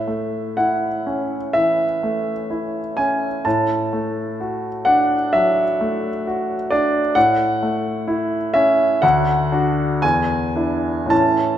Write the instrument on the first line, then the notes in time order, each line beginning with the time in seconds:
grand piano
Already playing: A2 E5
0.07 A3
0.57 E4 F#5
1.06 C#4
1.53 E3 E5
2.03 A3
2.50 E4
2.97 C#4 G#5
3.45 A2 A5
3.93 A3
4.40 F#4
4.85 D4 F#5
5.33 F#3 E5
5.81 A3
6.27 F#4
6.71 D4 D5
7.15 A2 F#5
7.63 A3
8.08 E4
8.54 C#4 E5
9.02 D2 F#5
9.52 D4 F#4
10.02 E2 G#5
10.56 D4 E4
11.06 A2 E3 C#4
11.10 E4 A5